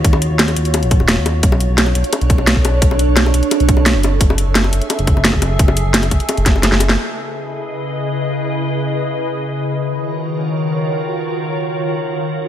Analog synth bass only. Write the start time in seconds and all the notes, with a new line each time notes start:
0.04 D#2
0.31 D#2
0.57 D#2
0.83 A#1
1.00 D#1
1.17 D#2
1.43 B1
1.69 B1
1.95 B1
2.21 B1
2.39 B1
2.56 B1
2.82 B1
3.08 B1
3.34 B1
3.60 B1
3.77 B1
3.95 F#1
4.21 F#1
4.47 F#1
4.73 F#1
4.99 F#1
5.16 F#1
5.33 F#1
5.59 F#1
5.86 F#1
6.11 F#1
6.38 F#1
6.55 F#1
6.72 F#1